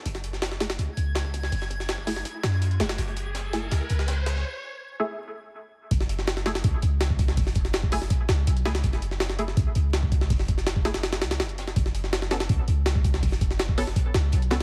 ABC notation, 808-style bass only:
X:1
M:4/4
L:1/8
Q:1/4=164
K:F#m
V:1 name="808-style bass" clef=bass
F,,,4 C,, C,,3 | F,,,4 z F,,2 F,,, | F,,,4 C,, C,,3 | z8 |
F,,,4 C,, C,,3 | F,,,4 z C,, B,,, C,, | F,,,4 C,, C,,3 | F,,,4- F,,, C,, F,,,2 |
F,,,4 C,, C,,3 | F,,,4 z C,, B,,, C,, |]